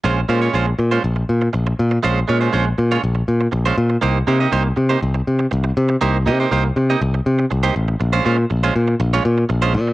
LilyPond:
<<
  \new Staff \with { instrumentName = "Clean electric guitar" } { \time 4/4 \key bes \dorian \tempo 4 = 121 <aes des' f' c''>16 r16 <aes des' f' c''>16 <aes des' f' des''>16 <aes des' f' c''>16 r8 <aes des' f' c''>16 r2 | <aes des' f' c''>16 r16 <aes des' f' des''>16 <aes des' f' c''>16 <aes des' f' c''>16 r8 <aes des' f' des''>16 r4 r16 <aes des' f' c''>16 r8 | <bes ees' g' c''>16 r16 <bes ees' g' c''>16 <bes ees' g' ees''>16 <bes ees' g' c''>16 r8 <bes ees' g' c''>16 r2 | <bes ees' g' c''>16 r16 <bes ees' g' ees''>16 <bes ees' g' c''>16 <bes ees' g' c''>16 r8 <bes ees' g' ees''>16 r4 r16 <bes ees' g' c''>16 r8 |
r16 <aes des' f' c''>16 <aes des' f' c''>16 r8 <aes des' f' c''>16 r8. <aes des' f' des''>16 r8. <aes des' f' c''>16 r8 | }
  \new Staff \with { instrumentName = "Picked electric bass" } { \clef bass \time 4/4 \key bes \dorian bes,,8 bes,8 bes,,8 bes,8 bes,,8 bes,8 bes,,8 bes,8 | bes,,8 bes,8 bes,,8 bes,8 bes,,8 bes,8 bes,,8 bes,8 | c,8 c8 c,8 c8 c,8 c8 c,8 c8 | c,8 c8 c,8 c8 c,8 c8 c,8 a,,8 |
bes,,8 bes,8 bes,,8 bes,8 bes,,8 bes,8 bes,,8 bes,8 | }
>>